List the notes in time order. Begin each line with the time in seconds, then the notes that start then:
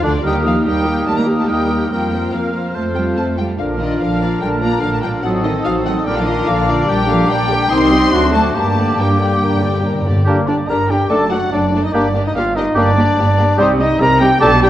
0.03 D2 D3 D4 D5
0.23 D#2 G3 A#3 D#4 G4 A#4 G5 D#6
0.27 A#3 A#4
0.44 F3 A#3 D#4 G4 F5
0.64 D#2 G3 D#4 G4 A#4 G5 D#6
0.68 A#3
0.85 A#3 D#4 G4
1.06 D#2 G3 A3 D#4 G4 A#4 A5
1.17 A#3 A#5
1.27 A#3 D#4 G4
1.38 A3 A5
1.48 D#2 G3 A#3 D#4 G4 A#4 G5 D#6
1.69 A#3 D#4 G4
1.90 F2 G3 A#3 C4 F4 A#4 G5 F6
2.12 F3 A#3 F4 C5
2.32 F2 F3 A#3 C4 A#4 F5 F6
2.52 F3 A#3 C5
2.56 F4
2.73 F2 A3 C4 C5 A5 F6
2.78 A4
2.94 F3 G3 A3 F4 A4 G5
3.15 F2 A3 C4 A4 A5
3.20 C5
3.37 F3 G3 A3 F4 A4 G5
3.57 A#1 D3 F3 D4 A#4 F5 F6
3.79 D#3 F3 A#3 F4 D5 D#5
3.99 A#1 D3 F3 D4 A#4 F5
4.22 F3 A#3 F4 D5
4.41 A#1 D3 G3 D4 A#4 G5
4.52 A3 A5
4.61 F3 A#3 F4 D5 A#5
4.81 A#1 D3 F3 D4 A#4 F5
4.93 A3 A5
5.02 F3 G3 A#3 F4 D5 G5
5.22 A1 F#3 C4 D#4 F#4 A4 C5 F#5 D#6
5.43 D#3 C4 A4 D#5
5.65 A1 F3 F#3 D#4 F#4 C5 F5
5.85 D#3 F#3 C4 A4 D#5 F#5
6.05 A#1 D3 G3 A#3 D4 F4 A#4 D5 G5 D6
6.17 F3 F5
6.26 D#3 F3 F4 A#4 D#5 F5
6.46 A#1 D3 F3 D4 F4 D5 F5
6.67 D3 F3 F4 A#4 D5 F5
6.87 A#1 G3 D4 G4 A#4 D5 G5
7.06 D3 F3 A#3 G4 A#4 F5
7.26 A#1 G3 D4 G5
7.31 A#4 D5
7.48 D3 A#3 G4 A#4
7.70 C2 D#3 G3 C4 D#4 C5 C6 D#6
7.91 G3 C4 G4 D#5
8.12 D2 F#3 A3 D4 F#4 A4 D6
8.33 D3 A3 C4 F#4 C5 A5
8.55 G2 G3 A3 A#3 D4 G4 A#4 A5
8.76 G2 D3 A#3 G4 D5
8.85 G2
8.94 G2 G3 D4
8.98 G2 G3 A#4 G5
9.17 G2 D3 A#3 G4 D5
9.25 G2
9.32 G2
9.40 G2 G3 D4 A#4
9.47 G2
9.54 G2
9.62 G2 D3 A#3 G4 D5
9.69 G2
9.77 G2
9.83 G2 G3 D4 A#4
9.93 G2
10.02 G2 D3 A#3
10.06 G2 G4 D5
10.16 G2
10.25 G1 G2 D3 G3 A#3 D4 G4 A#4 D6
10.47 D3 D4 G4 D5
10.67 G1 G2 D3 D4 G4 A#4 A#5
10.89 D3 D4 G4 G5
11.09 F#1 F#2 A3 D4 A4 A5 D6
11.30 A3 D4 F#4 A4 F#5
11.52 F#1 F#2 A3 D4 A4 D5
11.72 A3 D4 A4
11.84 D#4 D#5
11.92 G1 G2 A#3 D4 G4 D5 D6
12.15 A#3 D4 G4
12.26 D#4 D#5
12.35 G1 G2 A#3 D4 F4 G4 F5
12.56 A#3 D4 D#4 G4 D#5
12.75 G1 G2 A#3 D4 G4 D5 D6
12.96 A#3 D4 G4
13.17 G1 G2 A#3 D4 G4
13.38 A#3 D4 G4
13.57 C2 C3 G3 C4 D#4 G4 C5 D#6
13.61 D#4 G4
13.79 G3 C4 D#4 G4 D#5
14.00 C2 C3 G3 C4 D#4 G4 A#4 A#5
14.21 G3 C4 D#4 G4 G5
14.39 B1 B2 G3 D4 G4 A4 A5 D6
14.44 D4 G4
14.63 G3 D4 G4 G5